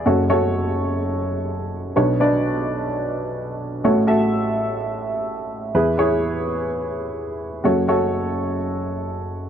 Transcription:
0.06 F#1 F#2 F#4 A4 C#5
0.30 F#4 A4 C#5
1.96 B1 B2 D4 B4 C#5
2.20 D4 B4 D5
3.84 A1 A2 F#4 A4 C#5
4.07 F#4 A4 E5
5.75 E2 E3 E4 G#4 B4
5.98 E4 G#4 C#5
7.64 F#1 F#2 F#4 A4 C#5
7.88 F#4 A4 C#5

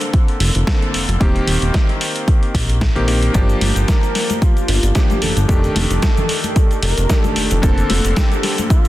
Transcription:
Already playing: D3 A#3 C4 A4
0.01 closed hi-hat
0.13 kick, closed hi-hat
0.28 closed hi-hat
0.40 F1, open hi-hat
0.55 F1, closed hi-hat
0.67 D3 A#3 C4 A4, kick, snare, closed hi-hat
0.82 closed hi-hat
0.94 F1, open hi-hat
1.08 F1, closed hi-hat
1.20 D#1 D#3 A#3 C4 G4, kick, closed hi-hat
1.36 closed hi-hat
1.47 D#1, open hi-hat
1.62 D#1, closed hi-hat
1.74 kick, snare, closed hi-hat
1.89 closed hi-hat
2.01 open hi-hat
2.16 closed hi-hat
2.28 kick, closed hi-hat
2.43 closed hi-hat
2.55 A#1, kick, open hi-hat
2.69 closed hi-hat
2.81 kick, snare, closed hi-hat
2.95 A#1 D#3 A#3 C4 G4, closed hi-hat
3.07 D#3 A#3 C4 G4, open hi-hat
3.23 closed hi-hat
3.33 G1 F3 A#3 D4 G4, kick, closed hi-hat, cabasa
3.49 closed hi-hat, cabasa
3.61 G1, open hi-hat, high conga
3.76 G1, closed hi-hat, cabasa
3.88 A#4, kick, snare, closed hi-hat, cabasa
4.03 closed hi-hat, cabasa
4.15 snare, open hi-hat
4.30 closed hi-hat, high conga, cabasa
4.41 F4, kick, closed hi-hat, cabasa
4.57 closed hi-hat, cabasa
4.68 G1, open hi-hat
4.83 G1, closed hi-hat, cabasa
4.95 F3 A#3 D4 G4, kick, snare, closed hi-hat, cabasa
5.10 closed hi-hat, high conga, cabasa
5.22 G1 A4, open hi-hat, low conga
5.37 G1, closed hi-hat, cabasa
5.48 F1 D#3 A3 D4 G4 A4, kick, closed hi-hat, cabasa
5.64 closed hi-hat, cabasa
5.76 F1, open hi-hat, high conga
5.90 F1, closed hi-hat, cabasa
6.02 kick, snare, closed hi-hat, cabasa
6.17 closed hi-hat, low conga, cabasa
6.29 open hi-hat
6.44 closed hi-hat, high conga, cabasa
6.56 kick, closed hi-hat, cabasa
6.71 closed hi-hat, cabasa
6.83 F1 A#4, open hi-hat
6.98 F1, closed hi-hat, cabasa
7.09 D#3 A3 D4 G4, kick, snare, closed hi-hat, cabasa
7.19 A4
7.24 closed hi-hat, high conga, cabasa
7.36 F1 A4, open hi-hat
7.51 F1, closed hi-hat, low conga, cabasa
7.62 F1 D3 A#3 C4 A4, kick, closed hi-hat, cabasa
7.78 closed hi-hat, cabasa
7.90 F1, open hi-hat, high conga
8.05 F1, closed hi-hat, cabasa
8.16 G4, kick, snare, closed hi-hat, cabasa
8.32 closed hi-hat, cabasa
8.43 snare, open hi-hat
8.58 closed hi-hat, high conga, cabasa
8.70 F4, kick, closed hi-hat, cabasa
8.85 closed hi-hat, cabasa

